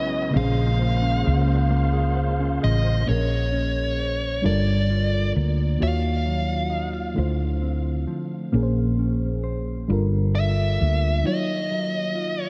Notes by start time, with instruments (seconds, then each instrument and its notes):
Already playing: fretless electric bass B1, fm electric piano C#3 C#4 E4 B4 D#5, tonewheel organ F#3 G#3 B3 C#4 E4, clean electric guitar C#4 E4 B4, lead electric guitar D#5
0.11 clean electric guitar D#5
0.30 fm electric piano C#3 A#3, tonewheel organ C#3 A#3 F4 C5, clean electric guitar A#3
0.34 fretless electric bass A#1, fm electric piano C4 G#4, lead electric guitar F5
0.39 fm electric piano C#4 C5
0.57 clean electric guitar G#4
0.79 clean electric guitar C5
1.02 clean electric guitar C#4
1.24 fretless electric bass C#2, clean electric guitar G#4
1.47 clean electric guitar C5
1.71 clean electric guitar A#3
1.93 clean electric guitar G#4
2.16 clean electric guitar C5
2.40 clean electric guitar C#4
2.61 fretless electric bass A1, clean electric guitar G#4, lead electric guitar D#5
2.84 clean electric guitar C5
3.06 fretless electric bass A#1, fm electric piano A#2 A#3 C#4 G#4, clean electric guitar A#3, lead electric guitar C#5
3.10 fm electric piano A#4
3.52 clean electric guitar C#4
3.99 clean electric guitar C5
4.42 fretless electric bass G1, fm electric piano G3 D4 F4 A4, clean electric guitar G3
4.46 fm electric piano A#4, lead electric guitar D5
4.90 clean electric guitar F4
5.36 fretless electric bass D2, clean electric guitar A#3
5.78 fretless electric bass D#2, fm electric piano D#3 A#3 F4 F#4, clean electric guitar D#3
5.82 fm electric piano C#5, lead electric guitar F5
6.26 clean electric guitar F#3
6.70 clean electric guitar D#4
6.93 clean electric guitar F4
7.14 fretless electric bass D2, fm electric piano D3 A3 E4 F4, clean electric guitar D3
7.19 fm electric piano C5
7.62 clean electric guitar C4
8.07 clean electric guitar F3
8.52 fretless electric bass A#1, fm electric piano A#2 A#3 C#4 G#4, clean electric guitar A#3
8.56 fm electric piano A#4
8.63 fm electric piano C5
8.99 clean electric guitar C#4
9.44 clean electric guitar C5
9.88 fretless electric bass G1, fm electric piano G3 D4 F4 A4, clean electric guitar G3
9.93 fm electric piano A#4
10.35 clean electric guitar F4, lead electric guitar E5
10.80 fretless electric bass D2, clean electric guitar A#3
11.23 fm electric piano D#3 D#4 F4, clean electric guitar D#3, lead electric guitar D#5
11.27 fm electric piano F#3 C#5
11.71 clean electric guitar F#3
12.15 clean electric guitar F4
12.43 lead electric guitar C#5